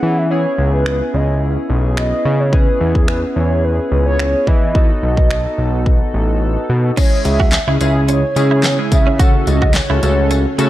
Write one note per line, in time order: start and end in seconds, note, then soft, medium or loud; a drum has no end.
0.00 0.46 E3 loud
0.00 0.26 B3 medium
0.00 0.27 C#4 medium
0.00 0.27 E4 medium
0.00 0.27 G#4 medium
0.00 0.19 F#5 loud
0.18 0.30 E5 medium
0.30 2.49 B3 medium
0.30 2.49 C#4 medium
0.30 2.49 E4 medium
0.30 2.49 G#4 medium
0.30 0.70 C#5 loud
0.58 1.02 C#2 loud
0.73 1.16 B4 medium
0.86 finger snap loud
1.14 1.57 C#2 medium
1.14 1.42 D#5 medium
1.70 2.13 B1 medium
1.97 2.41 D#5 loud
1.97 finger snap loud
2.25 2.69 C#3 loud
2.40 2.54 C#5 loud
2.52 4.71 B3 medium
2.52 4.71 C#4 medium
2.52 4.71 E4 medium
2.52 4.71 G#4 medium
2.52 2.95 B4 loud
2.52 kick loud
2.81 3.24 E2 loud
2.95 3.07 G#4 medium
2.95 kick medium
3.08 3.21 B4 medium
3.08 finger snap loud
3.36 3.80 E2 medium
3.36 3.65 C#5 loud
3.64 4.05 B4 medium
3.92 4.35 C#2 medium
4.06 4.48 C#5 loud
4.19 finger snap loud
4.47 4.91 E3 loud
4.47 6.41 D#5 loud
4.47 kick medium
4.75 6.93 B3 medium
4.75 6.93 D#4 medium
4.75 6.93 F#4 medium
4.75 6.94 A4 medium
4.75 kick loud
5.03 5.46 B1 medium
5.17 kick medium
5.31 finger snap loud
5.58 6.02 B1 medium
5.86 kick medium
6.14 6.57 A1 medium
6.70 6.91 B2 loud
6.97 10.70 C#3 medium
6.97 7.46 G#3 medium
6.97 10.70 C#4 medium
6.97 7.46 C#4 medium
6.97 7.09 C#4 medium
6.97 9.17 E4 medium
6.97 7.46 E4 medium
6.97 9.17 G#4 medium
6.97 7.46 G#4 medium
6.97 7.23 C#5 medium
6.97 kick loud
6.97 closed hi-hat medium
6.97 crash medium
6.97 tambourine soft
7.25 7.58 C#2 loud
7.25 7.77 E5 loud
7.25 muted clean electric guitar stroke soft
7.25 closed hi-hat medium
7.25 tambourine soft
7.40 7.51 F#4 medium
7.40 kick medium
7.52 muted clean electric guitar stroke soft
7.52 snare loud
7.52 clap loud
7.52 closed hi-hat loud
7.52 tambourine medium
7.67 7.78 C#2 medium
7.67 7.77 G#3 medium
7.67 7.77 C#4 medium
7.67 7.77 E4 medium
7.67 7.78 E4 medium
7.67 7.77 G#4 medium
7.80 8.24 C#2 medium
7.80 8.20 G#3 medium
7.80 8.20 C#4 medium
7.80 7.93 C#4 medium
7.80 8.20 E4 medium
7.80 8.20 G#4 medium
7.80 7.93 E5 loud
7.80 closed hi-hat medium
7.80 tambourine soft
8.08 8.21 C#4 medium
8.08 8.60 C#5 loud
8.08 closed hi-hat medium
8.08 tambourine soft
8.36 8.80 C#3 medium
8.36 8.65 G#3 medium
8.36 8.65 C#4 medium
8.36 8.65 E4 medium
8.36 8.65 G#4 medium
8.36 muted clean electric guitar stroke soft
8.36 closed hi-hat medium
8.36 tambourine soft
8.51 8.62 E4 medium
8.63 8.76 B3 medium
8.63 8.77 C#5 medium
8.63 snare medium
8.63 clap loud
8.63 closed hi-hat medium
8.63 tambourine medium
8.78 9.08 G#3 medium
8.78 9.08 C#4 medium
8.78 9.08 E4 medium
8.78 9.08 G#4 medium
8.78 muted clean electric guitar stroke soft
8.92 9.35 C#3 medium
8.92 9.21 E5 loud
8.92 kick loud
8.92 closed hi-hat medium
8.92 tambourine medium
9.07 9.17 C#4 medium
9.19 9.68 A3 medium
9.19 9.68 C#4 medium
9.19 10.70 F#4 medium
9.19 9.32 F#4 medium
9.19 9.69 F#4 medium
9.19 10.70 A4 medium
9.19 9.69 A4 medium
9.19 9.47 F#5 loud
9.19 kick loud
9.19 closed hi-hat medium
9.19 tambourine soft
9.47 9.81 C#2 loud
9.47 9.76 D#5 loud
9.47 muted clean electric guitar stroke soft
9.47 closed hi-hat medium
9.47 tambourine soft
9.62 9.73 F#4 medium
9.62 kick medium
9.74 10.58 C#5 medium
9.74 muted clean electric guitar stroke soft
9.74 snare loud
9.74 clap loud
9.74 closed hi-hat loud
9.74 tambourine medium
9.90 10.00 C#2 medium
9.90 9.99 A3 medium
9.90 9.99 C#4 medium
9.90 10.00 E4 medium
9.90 9.99 F#4 medium
9.90 9.99 A4 medium
10.03 10.46 C#2 medium
10.03 10.42 A3 medium
10.03 10.42 C#4 medium
10.03 10.15 C#4 medium
10.03 10.42 F#4 medium
10.03 10.42 A4 medium
10.03 closed hi-hat medium
10.03 tambourine soft
10.30 10.43 C#4 medium
10.30 closed hi-hat medium
10.30 tambourine soft
10.58 10.70 C#3 medium
10.58 10.70 A3 medium
10.58 10.70 C#4 medium
10.58 10.70 F#4 medium
10.58 10.70 A4 loud
10.58 muted clean electric guitar stroke soft
10.58 closed hi-hat medium
10.58 tambourine soft